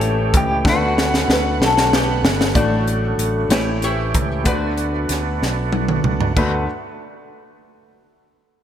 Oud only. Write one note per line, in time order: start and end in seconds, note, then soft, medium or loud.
1.32 1.41 B4 medium
1.63 1.94 A4 medium
1.94 2.52 B3 medium
1.94 2.57 G4 medium
2.56 3.47 A3 medium
2.56 3.47 D4 medium
2.56 3.52 F#4 medium
3.52 3.83 E4 medium
3.52 3.83 G4 soft
3.52 3.61 B4 medium
3.84 4.43 E4 medium
3.84 4.43 G4 medium
3.84 4.47 C#5 medium
4.46 5.69 F#4 medium
4.46 5.69 B4 medium
4.46 5.69 D5 medium